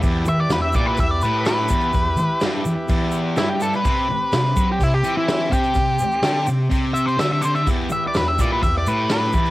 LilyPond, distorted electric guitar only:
\new Staff \with { instrumentName = "Distorted electric guitar" } { \clef bass \time 4/4 \key e \minor \tempo 4 = 126 e,8 r8 e,8 ais,8 e,8 a,4 e,8 | e,8 r8 g,8 e,8 e,4 g,4 | c8 r8 c8 fis8 c8 e4 c8 | c8 r8 d8 c8 c4 d4 |
e,8 r8 e,8 ais,8 e,8 a,4 e,8 | }